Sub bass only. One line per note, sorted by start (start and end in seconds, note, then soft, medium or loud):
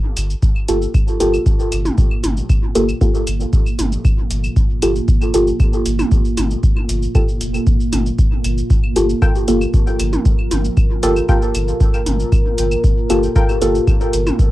0.17 0.34 G1 medium
0.68 0.86 G1 loud
1.20 1.38 G1 medium
1.72 1.90 G1 medium
2.24 2.41 G1 medium
2.75 2.93 G1 loud
3.27 3.45 G1 medium
3.79 3.97 G1 loud
4.31 4.48 G1 loud
4.82 5.00 G1 loud
5.34 5.52 G1 medium
5.86 6.03 G1 loud
6.37 6.55 G1 loud
6.89 7.07 G1 loud
7.41 7.59 F1 medium
7.93 8.10 G1 medium
8.44 8.62 G1 medium
8.96 9.14 G1 loud
9.48 9.66 G1 medium
10.00 10.17 G1 loud
10.51 10.69 G1 loud
11.03 11.21 G1 loud
11.55 11.72 G1 medium
12.06 12.24 G1 loud
12.58 12.76 G1 loud
13.10 13.28 G1 loud
13.62 13.79 G1 medium
14.13 14.31 G1 loud